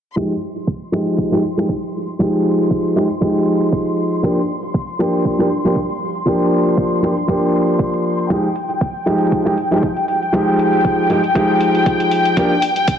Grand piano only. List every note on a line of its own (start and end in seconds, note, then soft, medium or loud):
0.16 0.31 F3 medium
0.16 0.31 G#3 medium
0.16 0.31 D#4 medium
0.16 0.31 G4 medium
0.92 1.29 F3 medium
0.92 1.29 G#3 medium
0.92 1.29 D#4 medium
0.92 1.29 G4 medium
1.31 1.39 F3 medium
1.31 1.39 G#3 medium
1.31 1.40 D#4 medium
1.31 1.40 G4 medium
1.57 1.69 F3 medium
1.57 1.69 G#3 medium
1.57 1.69 D#4 medium
1.57 1.70 G4 medium
2.19 2.93 F3 medium
2.19 2.93 G#3 medium
2.19 2.94 D#4 medium
2.19 2.94 G4 medium
2.96 3.05 F3 medium
2.96 3.05 G#3 medium
2.96 3.05 D#4 medium
2.96 3.05 G4 medium
3.21 4.20 F3 medium
3.21 4.20 G#3 medium
3.21 4.21 D#4 medium
3.21 4.21 G4 medium
4.23 4.37 F3 medium
4.23 4.37 A#3 medium
4.23 4.38 D4 medium
4.23 4.38 G4 medium
4.99 5.35 F3 medium
4.99 5.36 A#3 medium
4.99 5.36 D4 medium
4.99 5.36 G4 medium
5.39 5.46 F3 medium
5.39 5.46 A#3 medium
5.39 5.46 D4 medium
5.39 5.47 G4 loud
5.65 5.76 F3 medium
5.65 5.76 A#3 medium
5.65 5.77 D4 medium
5.65 5.77 G4 medium
6.26 7.00 F3 medium
6.26 7.00 A#3 medium
6.26 7.00 D4 medium
6.26 7.01 G4 medium
7.02 7.12 F3 medium
7.02 7.12 A#3 medium
7.02 7.12 D4 medium
7.02 7.12 G4 medium
7.27 8.27 F3 medium
7.27 8.27 A#3 medium
7.27 8.28 D4 medium
7.27 8.28 G4 medium
8.30 8.44 F3 medium
8.30 8.44 G#3 medium
8.30 8.44 D#4 medium
8.30 8.45 G4 medium
9.06 9.42 F3 medium
9.06 9.43 G#3 medium
9.06 9.43 D#4 medium
9.06 9.43 G4 medium
9.45 9.53 F3 medium
9.45 9.53 G#3 medium
9.45 9.53 D#4 medium
9.45 9.53 G4 medium
9.71 9.83 F3 medium
9.71 9.83 G#3 medium
9.71 9.83 D#4 medium
9.71 9.83 G4 medium
10.33 11.07 F3 medium
10.33 11.07 G#3 medium
10.33 11.07 D#4 medium
10.33 11.08 G4 loud
11.10 11.19 F3 medium
11.10 11.19 G#3 medium
11.10 11.19 D#4 medium
11.10 11.19 G4 medium
11.35 12.34 F3 medium
11.35 12.34 G#3 medium
11.35 12.35 D#4 medium
11.35 12.35 G4 medium
12.37 12.51 F3 medium
12.37 12.51 A#3 medium
12.37 12.51 D4 medium
12.37 12.52 G4 medium